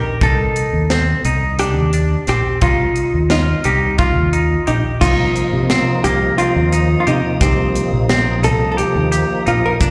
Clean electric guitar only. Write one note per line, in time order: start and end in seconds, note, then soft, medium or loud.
0.00 0.18 G4 medium
0.22 0.82 D#4 medium
0.91 1.21 C4 medium
1.25 1.55 D#4 medium
1.60 1.89 D4 medium
1.94 2.24 D4 medium
2.28 2.58 C4 medium
2.62 3.22 D#4 medium
3.30 3.60 F4 medium
3.64 3.95 D#4 medium
3.98 4.29 F4 medium
4.33 4.63 D#4 medium
4.67 4.97 G4 medium
5.01 5.62 D#4 medium
5.70 6.00 C4 medium
6.05 6.35 A#3 medium
6.39 6.69 C4 medium
6.73 7.03 D#4 medium
7.07 7.37 G4 medium
7.41 8.02 C4 medium
8.10 8.40 C4 medium
8.43 8.74 D#4 medium
8.77 9.08 G4 medium
9.12 9.42 G4 medium
9.46 9.77 D#4 medium
9.81 9.90 D4 medium